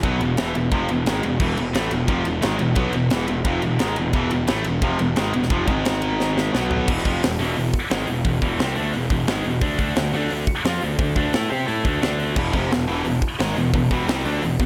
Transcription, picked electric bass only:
0.04 0.20 B1 loud
0.22 0.37 E1 medium
0.39 0.54 E1 loud
0.56 0.71 E1 medium
0.72 0.88 F1 loud
0.90 1.05 E1 medium
1.06 1.22 G#1 loud
1.24 1.39 E1 medium
1.40 1.56 E1 medium
1.58 1.74 E1 medium
1.75 1.91 A1 loud
1.93 2.08 E1 medium
2.08 2.24 F1 loud
2.26 2.42 E1 medium
2.43 2.59 G#1 loud
2.61 2.76 E1 medium
2.76 2.93 B1 loud
2.95 3.10 E1 medium
3.12 3.28 E1 medium
3.29 3.44 E1 medium
3.45 3.61 F1 medium
3.63 3.79 E1 medium
3.81 3.96 G#1 loud
3.98 4.13 E1 medium
4.14 4.30 E1 loud
4.32 4.47 E1 medium
4.50 4.65 A1 loud
4.66 4.82 E1 medium
4.82 4.98 F1 medium
5.00 5.16 E1 medium
5.18 5.33 G#1 loud
5.35 5.50 E1 medium
5.50 5.66 F1 loud
5.68 6.49 G#1 loud
6.54 6.86 B1 loud
6.88 7.04 E1 loud
7.06 7.21 F1 loud
7.23 7.38 E1 medium
7.41 7.56 E1 loud
7.57 7.73 E1 medium
7.91 8.07 G#1 loud
8.08 8.24 E1 medium
8.25 8.41 E1 medium
8.42 8.58 E1 loud
8.59 8.75 C2 loud
8.77 8.93 D2 loud
8.94 9.10 E1 medium
9.10 9.26 E1 medium
9.28 9.44 G#1 loud
9.46 9.61 E1 medium
9.62 9.78 D2 loud
9.79 9.95 D2 loud
9.96 10.12 D2 medium
10.14 10.30 D2 loud
10.31 10.47 D2 medium
10.65 10.81 F2 loud
10.83 10.98 D2 medium
10.99 11.15 D2 medium
11.16 11.32 D2 loud
11.34 11.50 A2 loud
11.52 11.67 C3 loud
11.68 11.84 A2 medium
11.85 12.01 D2 loud
12.03 12.34 D2 medium
12.37 12.52 E1 loud
12.54 12.70 F1 medium
12.72 12.87 E1 medium
12.88 13.04 E1 medium
13.06 13.21 E1 medium
13.40 13.55 G#1 loud
13.56 13.72 E1 medium
13.74 13.90 E1 medium
13.91 14.07 E1 loud
14.08 14.24 C2 loud
14.25 14.41 D2 loud
14.42 14.58 E1 medium
14.60 14.66 E1 medium

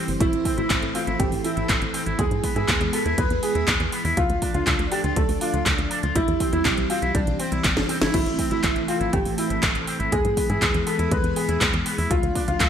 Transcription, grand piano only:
0.21 0.50 E4 loud
0.58 0.87 E4 medium
0.95 1.14 F4 medium
1.20 1.39 G4 medium
1.45 1.64 E4 medium
2.19 2.48 G#4 loud
2.56 2.85 G#4 medium
2.93 3.13 A4 medium
3.18 3.38 B4 medium
3.43 3.62 G#4 medium
4.17 4.46 F4 loud
4.54 4.84 F4 medium
4.92 5.11 G4 medium
5.16 5.36 A4 medium
5.41 5.61 F4 medium
6.16 6.45 E4 loud
6.53 6.82 E4 medium
6.90 7.09 F4 medium
7.15 7.34 D4 medium
7.40 7.59 C4 medium
8.14 8.43 E4 loud
8.51 8.80 E4 medium
8.88 9.08 F4 medium
9.13 9.33 G4 medium
9.38 9.57 E4 medium
10.12 10.42 G#4 loud
10.50 10.79 G#4 medium
10.87 11.06 A4 medium
11.12 11.31 B4 medium
11.36 11.56 G#4 medium
12.11 12.40 F4 loud
12.48 12.69 F4 medium

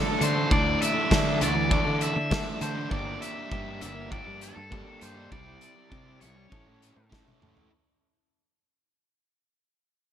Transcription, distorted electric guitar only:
0.00 0.19 E3 medium
0.00 0.19 A3 medium
0.00 0.21 D4 medium
0.00 0.21 A4 loud
0.20 0.48 E3 medium
0.20 0.37 A3 medium
0.20 0.36 D4 medium
0.20 0.33 A4 medium
0.34 0.50 A3 medium
0.34 0.51 D4 soft
0.34 0.51 A4 medium
0.49 1.08 E3 medium
0.49 0.97 A3 medium
0.49 0.96 D4 medium
0.49 0.94 A4 loud
0.95 1.09 A3 medium
0.95 1.11 D4 medium
0.95 1.11 A4 medium
1.10 1.39 E3 medium
1.10 1.40 A3 medium
1.10 1.42 D4 loud
1.10 1.42 A4 medium
1.40 1.69 E3 medium
1.40 1.55 A3 medium
1.40 1.56 D4 medium
1.40 1.54 A4 medium
1.55 muted distorted electric guitar stroke soft
1.70 2.16 E3 medium
1.70 1.87 A3 medium
1.70 1.87 D4 medium
1.70 1.84 A4 medium
1.85 2.16 A3 medium
1.85 2.16 D4 medium
1.85 2.15 A4 medium
2.16 muted distorted electric guitar stroke soft
2.30 2.59 E3 medium
2.30 2.60 A3 medium
2.30 2.61 D4 medium
2.30 2.62 A4 medium
2.60 2.89 E3 medium
2.60 2.77 A3 medium
2.60 2.76 D4 medium
2.60 2.73 A4 medium
2.75 2.89 A3 soft
2.75 2.91 D4 medium
2.75 2.89 A4 medium
2.90 3.48 A#3 medium
2.90 3.37 D4 loud
2.90 3.34 G4 loud
3.35 3.51 D4 medium
3.35 3.52 G4 medium
3.50 3.79 A#3 medium
3.50 3.80 D4 medium
3.50 3.82 G4 medium
3.80 4.08 A#3 medium
3.80 3.95 D4 medium
3.80 3.94 G4 medium
3.95 muted distorted electric guitar stroke soft
4.09 4.55 A#3 medium
4.09 4.26 D4 medium
4.09 4.23 G4 medium
4.24 4.55 D4 medium
4.24 4.55 G4 medium
4.56 muted distorted electric guitar stroke soft
4.70 4.99 A#3 medium
4.70 5.01 D4 medium
4.70 5.03 G4 medium
5.01 5.29 A#3 medium
5.01 5.17 D4 medium
5.01 5.15 G4 medium
5.16 5.31 D4 medium
5.16 5.29 G4 medium
5.30 5.88 G3 loud
5.30 5.76 C4 medium
5.30 5.75 E4 medium
5.30 5.73 G4 loud
5.74 5.90 C4 medium
5.74 5.91 E4 medium
5.74 5.92 G4 medium
5.90 6.18 G3 medium
5.90 6.20 C4 medium
5.90 6.21 E4 medium
5.90 6.22 G4 medium
6.20 6.49 G3 medium
6.20 6.36 C4 medium
6.20 6.35 E4 medium
6.20 6.35 G4 medium
6.36 muted distorted electric guitar stroke soft
6.50 6.96 C#4 medium
6.50 6.68 E4 medium
6.50 6.64 A4 medium
6.66 6.96 E4 soft
6.66 6.95 A4 medium
6.97 muted distorted electric guitar stroke soft
7.10 7.39 C#4 medium
7.10 7.40 E4 medium
7.10 7.42 A4 medium
7.40 7.69 C#4 medium
7.40 7.57 E4 medium
7.40 7.54 A4 medium
7.55 7.71 E4 medium
7.55 7.69 A4 medium

